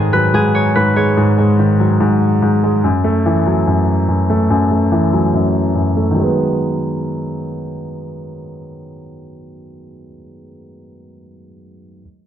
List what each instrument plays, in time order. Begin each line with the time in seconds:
Already playing: grand piano G#2 D#3 G#3, harp G#4 B4 C#5
0.13 grand piano F#3, harp B4
0.34 grand piano G#2, harp G#4
0.55 harp C#5
0.75 grand piano G#2, harp B4
0.96 grand piano G#3, harp C#5
1.17 grand piano G#2
1.38 grand piano G#3
1.59 grand piano D#3
1.80 grand piano F#3
2.00 grand piano G#2
2.42 grand piano G#2
2.64 grand piano G#3
2.84 grand piano F#2
3.04 grand piano A3
3.26 grand piano E3
3.47 grand piano F#3
3.67 grand piano F#2
4.09 grand piano F#2
4.30 grand piano A3
4.50 grand piano F#2
4.71 grand piano A3
4.92 grand piano E3
5.13 grand piano F#3
5.34 grand piano F#2
5.75 grand piano F#2
5.97 grand piano A3
6.11 grand piano D#3
6.15 grand piano F#3 G#3
6.23 grand piano B3